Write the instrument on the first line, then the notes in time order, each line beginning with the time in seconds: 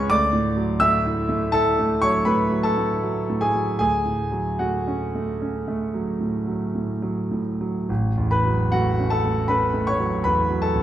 grand piano
Already playing: C#2 G#2 G#3 C#4 B4 C#5 B5 C#6
0.10 D2 D5 D6
0.33 A2
0.57 F#3
0.80 A3 E5 E6
1.06 E4
1.29 A3
1.52 E4 A4 A5
1.79 A3
2.02 F#3 C#5 C#6
2.25 A2 B4 B5
2.51 F#3
2.63 A4 A5
2.78 A2
3.03 F#3
3.30 A2
3.41 G#4 G#5
3.55 F#3
3.79 D2 G#4 G#5
4.05 A2
4.32 F#3
4.59 A3 F#4 F#5
4.87 C#4
5.15 A3
5.42 C#4
5.68 A3
5.94 F#3
6.20 A2
6.47 F#3
6.75 A2
7.02 F#3
7.31 A2
7.61 F#3
7.89 A1
8.17 E2
8.31 B4 B5
8.45 F#3
8.72 A3 F#4 F#5
9.00 C#4
9.10 A4 A5
9.25 A3
9.48 C#4 B4 B5
9.74 A3
9.87 C#5 C#6
9.99 F#3
10.24 E2 B4 B5
10.50 F#3
10.62 A4 A5
10.75 E2